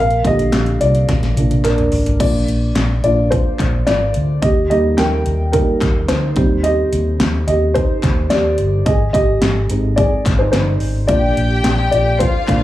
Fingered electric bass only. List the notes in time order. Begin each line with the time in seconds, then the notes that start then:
Already playing: A#1
0.25 A#1
0.53 A#1
0.81 C2
1.09 A#1
1.36 A#1
1.64 A#1
1.92 G#1
2.20 A#1
2.48 A#1
2.75 A#1
3.04 A#1
3.59 A#1
3.87 G#1
4.16 D2
4.43 D#2
4.70 D#2
4.99 D#2
5.26 D#2
5.81 D#2
6.10 D2
6.37 D#2
6.92 D#2
7.20 D#2
7.48 D#2
8.03 D#2
8.31 D#2
8.59 G1
8.86 G#1
9.14 G#1
9.42 G#1
9.70 G#1
10.26 G#1
10.54 G1
10.82 G#1
11.09 A#1
11.37 A#1
11.65 A#1
11.93 A#1
12.48 A#1